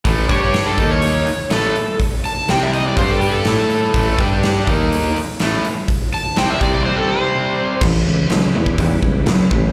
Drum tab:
CC |----------------|----------------|----------------|----------------|
HH |o-o-o-o-o-o-o-o-|o-o-o-o-o-o-o-o-|o-o-o-o-o-o-o-o-|o-o-o-o---------|
SD |----o-------o---|----o-------o---|----o-------o---|----o-----------|
BD |o-o---o---------|o-------o-------|o-o---o---------|o-----o---------|

CC |x---------------|
HH |----o---o---o---|
SD |----o-------o---|
BD |o------oo-o---o-|